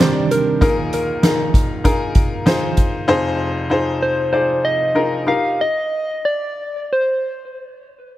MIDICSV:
0, 0, Header, 1, 5, 480
1, 0, Start_track
1, 0, Tempo, 620476
1, 474, Time_signature, 4, 2, 24, 8
1, 3837, Tempo, 658617
1, 5277, Tempo, 700935
1, 6128, End_track
2, 0, Start_track
2, 0, Title_t, "Soft synth lead"
2, 0, Program_c, 0, 80
2, 0, Note_on_c, 0, 74, 127
2, 244, Note_on_c, 0, 70, 93
2, 255, Note_off_c, 0, 74, 0
2, 474, Note_off_c, 0, 70, 0
2, 479, Note_on_c, 0, 70, 104
2, 585, Note_off_c, 0, 70, 0
2, 726, Note_on_c, 0, 70, 94
2, 1166, Note_off_c, 0, 70, 0
2, 3114, Note_on_c, 0, 72, 95
2, 3335, Note_off_c, 0, 72, 0
2, 3347, Note_on_c, 0, 72, 103
2, 3595, Note_on_c, 0, 75, 121
2, 3606, Note_off_c, 0, 72, 0
2, 4069, Note_on_c, 0, 77, 101
2, 4080, Note_off_c, 0, 75, 0
2, 4305, Note_off_c, 0, 77, 0
2, 4312, Note_on_c, 0, 75, 127
2, 4778, Note_on_c, 0, 74, 101
2, 4789, Note_off_c, 0, 75, 0
2, 5270, Note_on_c, 0, 72, 87
2, 5281, Note_off_c, 0, 74, 0
2, 5747, Note_off_c, 0, 72, 0
2, 6128, End_track
3, 0, Start_track
3, 0, Title_t, "Upright piano"
3, 0, Program_c, 1, 0
3, 0, Control_c, 1, 64, 127
3, 0, Note_on_c, 1, 36, 61
3, 0, Note_on_c, 1, 48, 59
3, 0, Note_on_c, 1, 51, 70
3, 0, Note_on_c, 1, 62, 76
3, 0, Note_on_c, 1, 67, 63
3, 0, Note_on_c, 1, 68, 65
3, 0, Note_on_c, 1, 70, 78
3, 0, Note_on_c, 1, 72, 75
3, 429, Note_off_c, 1, 51, 0
3, 430, Note_off_c, 1, 62, 0
3, 431, Note_off_c, 1, 67, 0
3, 431, Note_off_c, 1, 72, 0
3, 442, Note_off_c, 1, 48, 0
3, 443, Note_off_c, 1, 36, 0
3, 471, Note_on_c, 1, 65, 82
3, 473, Note_on_c, 1, 63, 99
3, 475, Note_off_c, 1, 68, 0
3, 475, Note_on_c, 1, 68, 91
3, 477, Note_on_c, 1, 34, 63
3, 477, Note_on_c, 1, 46, 61
3, 479, Note_off_c, 1, 70, 0
3, 479, Note_on_c, 1, 70, 98
3, 484, Control_c, 1, 64, 0
3, 612, Control_c, 1, 64, 127
3, 909, Note_off_c, 1, 65, 0
3, 910, Note_off_c, 1, 63, 0
3, 911, Note_off_c, 1, 68, 0
3, 913, Note_off_c, 1, 70, 0
3, 951, Note_on_c, 1, 63, 80
3, 953, Note_on_c, 1, 65, 71
3, 958, Note_on_c, 1, 68, 71
3, 958, Note_on_c, 1, 70, 79
3, 1388, Note_off_c, 1, 63, 0
3, 1389, Note_off_c, 1, 65, 0
3, 1391, Note_off_c, 1, 70, 0
3, 1392, Note_off_c, 1, 68, 0
3, 1425, Note_on_c, 1, 63, 89
3, 1426, Note_on_c, 1, 65, 84
3, 1428, Note_on_c, 1, 68, 84
3, 1431, Note_on_c, 1, 70, 102
3, 1864, Note_off_c, 1, 63, 0
3, 1864, Note_off_c, 1, 65, 0
3, 1865, Note_off_c, 1, 68, 0
3, 1867, Note_off_c, 1, 70, 0
3, 1901, Note_on_c, 1, 63, 95
3, 1902, Note_on_c, 1, 65, 92
3, 1907, Note_on_c, 1, 68, 90
3, 1908, Note_on_c, 1, 72, 94
3, 2341, Note_off_c, 1, 63, 0
3, 2341, Note_off_c, 1, 65, 0
3, 2343, Note_off_c, 1, 68, 0
3, 2344, Note_off_c, 1, 72, 0
3, 2356, Note_off_c, 1, 34, 0
3, 2356, Note_off_c, 1, 46, 0
3, 2380, Note_on_c, 1, 65, 100
3, 2381, Note_on_c, 1, 63, 113
3, 2382, Note_on_c, 1, 29, 72
3, 2384, Note_on_c, 1, 68, 107
3, 2386, Note_on_c, 1, 41, 81
3, 2386, Note_on_c, 1, 72, 122
3, 2395, Control_c, 1, 64, 0
3, 2517, Control_c, 1, 64, 127
3, 2820, Note_off_c, 1, 65, 0
3, 2821, Note_off_c, 1, 63, 0
3, 2822, Note_off_c, 1, 68, 0
3, 2823, Note_off_c, 1, 72, 0
3, 2862, Note_on_c, 1, 63, 92
3, 2863, Note_on_c, 1, 65, 82
3, 2868, Note_on_c, 1, 68, 85
3, 2872, Note_on_c, 1, 72, 102
3, 3304, Note_off_c, 1, 63, 0
3, 3305, Note_off_c, 1, 65, 0
3, 3307, Note_off_c, 1, 68, 0
3, 3309, Note_off_c, 1, 72, 0
3, 3347, Note_on_c, 1, 63, 72
3, 3350, Note_on_c, 1, 65, 72
3, 3354, Note_on_c, 1, 68, 72
3, 3354, Note_on_c, 1, 74, 79
3, 3794, Note_off_c, 1, 63, 0
3, 3796, Note_off_c, 1, 65, 0
3, 3797, Note_off_c, 1, 68, 0
3, 3797, Note_off_c, 1, 74, 0
3, 3828, Note_on_c, 1, 63, 71
3, 3831, Note_on_c, 1, 65, 77
3, 3833, Note_on_c, 1, 68, 67
3, 3833, Note_on_c, 1, 70, 86
3, 4039, Note_off_c, 1, 29, 0
3, 4042, Note_off_c, 1, 41, 0
3, 4049, Note_off_c, 1, 63, 0
3, 4050, Note_off_c, 1, 65, 0
3, 4057, Note_off_c, 1, 70, 0
3, 4060, Note_on_c, 1, 63, 76
3, 4061, Note_on_c, 1, 65, 61
3, 4063, Note_on_c, 1, 67, 66
3, 4067, Note_on_c, 1, 70, 81
3, 4068, Note_off_c, 1, 68, 0
3, 4079, Control_c, 1, 64, 0
3, 4170, Control_c, 1, 64, 127
3, 4280, Note_off_c, 1, 63, 0
3, 4281, Note_off_c, 1, 65, 0
3, 4282, Note_off_c, 1, 67, 0
3, 4284, Note_off_c, 1, 70, 0
3, 4314, Control_c, 1, 64, 0
3, 6128, End_track
4, 0, Start_track
4, 0, Title_t, "Steel-string acoustic guitar"
4, 0, Program_c, 2, 25
4, 0, Note_on_c, 2, 48, 94
4, 0, Note_on_c, 2, 51, 91
4, 3, Note_on_c, 2, 55, 101
4, 5, Note_on_c, 2, 60, 103
4, 9, Note_on_c, 2, 62, 110
4, 11, Note_on_c, 2, 67, 98
4, 475, Note_off_c, 2, 48, 0
4, 477, Note_off_c, 2, 55, 0
4, 478, Note_off_c, 2, 60, 0
4, 480, Note_off_c, 2, 62, 0
4, 481, Note_off_c, 2, 67, 0
4, 868, Note_off_c, 2, 51, 0
4, 6128, End_track
5, 0, Start_track
5, 0, Title_t, "Drums"
5, 3, Note_on_c, 9, 38, 98
5, 4, Note_on_c, 9, 42, 77
5, 6, Note_on_c, 9, 39, 99
5, 80, Note_off_c, 9, 38, 0
5, 81, Note_off_c, 9, 42, 0
5, 84, Note_off_c, 9, 39, 0
5, 242, Note_on_c, 9, 42, 65
5, 319, Note_off_c, 9, 42, 0
5, 477, Note_on_c, 9, 36, 121
5, 479, Note_on_c, 9, 42, 100
5, 555, Note_off_c, 9, 36, 0
5, 556, Note_off_c, 9, 42, 0
5, 718, Note_on_c, 9, 42, 62
5, 796, Note_off_c, 9, 42, 0
5, 953, Note_on_c, 9, 38, 115
5, 954, Note_on_c, 9, 42, 105
5, 1030, Note_off_c, 9, 38, 0
5, 1032, Note_off_c, 9, 42, 0
5, 1192, Note_on_c, 9, 36, 94
5, 1198, Note_on_c, 9, 42, 82
5, 1270, Note_off_c, 9, 36, 0
5, 1275, Note_off_c, 9, 42, 0
5, 1431, Note_on_c, 9, 36, 86
5, 1431, Note_on_c, 9, 42, 110
5, 1508, Note_off_c, 9, 36, 0
5, 1509, Note_off_c, 9, 42, 0
5, 1663, Note_on_c, 9, 42, 75
5, 1668, Note_on_c, 9, 36, 97
5, 1741, Note_off_c, 9, 42, 0
5, 1745, Note_off_c, 9, 36, 0
5, 1906, Note_on_c, 9, 38, 120
5, 1907, Note_on_c, 9, 42, 74
5, 1983, Note_off_c, 9, 38, 0
5, 1985, Note_off_c, 9, 42, 0
5, 2144, Note_on_c, 9, 42, 64
5, 2148, Note_on_c, 9, 36, 75
5, 2221, Note_off_c, 9, 42, 0
5, 2226, Note_off_c, 9, 36, 0
5, 6128, End_track
0, 0, End_of_file